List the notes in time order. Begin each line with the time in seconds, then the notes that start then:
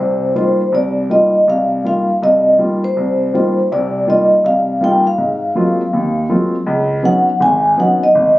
Already playing: C5
0.00 C2 C3
0.35 G3 A#3 D#4 F4 C5
0.72 C2 D5
1.10 G3 A#3 D#4 F4 D#5
1.48 C2 F5
1.84 G3 A#3 D#4 F4 F5
2.22 C2 D#5
2.59 G3 A#3 D#4 F4
2.84 C5
2.97 C2
3.34 G3 A#3 D#4 F4 C5
3.72 C2 C3 D5
4.07 G3 A#3 D#4 F4 D#5
4.44 C2 F5
4.81 G3 A#3 D#4 F4 G5
5.07 F5
5.18 G#2
5.55 F#3 G#3 A#3 C4 F4
5.93 D#2
6.29 F#3 G#3 A#3 C4 F4
6.66 C#2
7.03 F#3 B3 C#4 D#4 F#5
7.40 G#1 G#5
7.77 F#3 B3 C#4 D#4 F#5
8.03 D#5
8.15 G#1